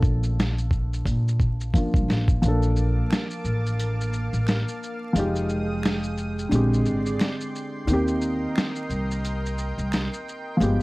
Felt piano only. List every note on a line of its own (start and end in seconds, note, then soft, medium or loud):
0.00 1.69 F3 medium
0.00 1.70 A#3 medium
0.00 1.71 D4 medium
0.00 1.72 A4 medium
1.74 2.40 F3 medium
1.74 2.42 A#3 medium
1.74 2.43 D4 soft
1.74 2.44 F4 medium
2.42 5.11 F3 medium
2.42 5.12 A#3 medium
2.46 5.13 D4 medium
2.46 5.14 A4 medium
5.13 6.48 F3 medium
5.13 6.49 G#3 medium
5.17 6.50 D#4 medium
5.17 6.51 G4 medium
6.49 7.84 D3 medium
6.49 7.85 G#3 medium
6.53 7.86 C4 medium
6.53 7.87 G4 medium
7.87 10.56 D#3 medium
7.87 10.57 A#3 medium
7.91 10.58 C4 medium
7.91 10.59 G4 medium
10.57 10.82 F3 medium
10.57 10.82 G#3 medium
10.61 10.82 B3 medium
10.61 10.82 G4 medium